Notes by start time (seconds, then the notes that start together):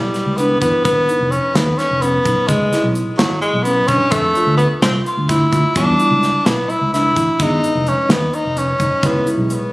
Already playing: G3 E4
0.14 snare, closed hi-hat
0.26 C#2
0.37 B3 D4, closed hi-hat
0.61 E2 B3 E4, kick, closed hi-hat
0.85 G#1 B3, kick, closed hi-hat
1.09 D#4, closed hi-hat
1.20 F1
1.31 C#4, closed hi-hat
1.55 D#2 B3 D#4, snare, closed hi-hat
1.78 C#4, snare, closed hi-hat
1.91 F1
2.02 B3 C#4, closed hi-hat
2.25 B1 D#4, kick, closed hi-hat
2.48 C#2 G#3, kick, closed hi-hat
2.73 E4, snare, closed hi-hat
2.84 B1
2.95 closed hi-hat
3.18 G#1 F#3 E4, snare, closed hi-hat
3.41 G#3, closed hi-hat
3.53 B1
3.63 B3 C#4, closed hi-hat
3.88 B1 C#4 D4, kick, closed hi-hat
4.11 F2 A3, kick, closed hi-hat
4.35 F4, closed hi-hat
4.47 D2
4.57 B3, closed hi-hat
4.82 C2 C4 F4, snare, closed hi-hat
5.06 F4, closed hi-hat
5.17 D2
5.29 E4, kick, closed hi-hat
5.52 D2 F4, kick, closed hi-hat
5.75 E2 G3 B3 D4 E4, kick, closed hi-hat
6.00 E4, closed hi-hat
6.11 C#2
6.23 snare, closed hi-hat
6.46 B1 B3 E4, snare, closed hi-hat
6.70 E4, closed hi-hat
6.81 C#2
6.93 D4 E4, snare, closed hi-hat
7.16 A1 E4, kick, closed hi-hat
7.39 G#1 G#3 B3 D#4, kick, closed hi-hat
7.63 D#4, closed hi-hat
7.75 F1
7.87 C#4, closed hi-hat
8.09 D#2 B3 D#4, snare, closed hi-hat
8.33 D#4, closed hi-hat
8.45 F1
8.57 C#4, closed hi-hat
8.80 F1 D#4, kick, closed hi-hat
9.03 C#2 G#3 B3 C#4 E4, kick, closed hi-hat
9.26 E4, closed hi-hat
9.37 B1
9.50 closed hi-hat